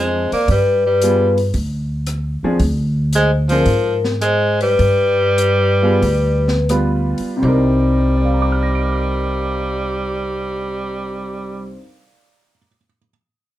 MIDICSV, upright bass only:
0, 0, Header, 1, 3, 480
1, 0, Start_track
1, 0, Key_signature, -3, "minor"
1, 0, Tempo, 529101
1, 441, Time_signature, 4, 2, 24, 8
1, 3323, Tempo, 563380
1, 4283, Tempo, 615385
1, 5243, Tempo, 671892
1, 5723, Tempo, 722892
1, 6203, Tempo, 752823
1, 10138, End_track
2, 0, Start_track
2, 0, Title_t, "Upright bass"
2, 0, Program_c, 0, 32
2, 0, Note_on_c, 0, 41, 83
2, 254, Note_off_c, 0, 41, 0
2, 436, Note_on_c, 0, 43, 87
2, 1359, Note_off_c, 0, 43, 0
2, 1396, Note_on_c, 0, 38, 80
2, 2169, Note_off_c, 0, 38, 0
2, 2357, Note_on_c, 0, 38, 90
2, 3289, Note_off_c, 0, 38, 0
2, 3319, Note_on_c, 0, 44, 83
2, 4248, Note_off_c, 0, 44, 0
2, 4285, Note_on_c, 0, 43, 89
2, 5213, Note_off_c, 0, 43, 0
2, 5242, Note_on_c, 0, 38, 84
2, 6024, Note_off_c, 0, 38, 0
2, 6210, Note_on_c, 0, 36, 93
2, 8971, Note_off_c, 0, 36, 0
2, 10138, End_track
3, 0, Start_track
3, 0, Title_t, "Muted upright bass strokes"
3, 291, Note_on_c, 9, 29, 42
3, 381, Note_off_c, 9, 29, 0
3, 2205, Note_on_c, 9, 29, 41
3, 2296, Note_off_c, 9, 29, 0
3, 6057, Note_on_c, 9, 29, 39
3, 6123, Note_off_c, 9, 29, 0
3, 10138, End_track
0, 0, End_of_file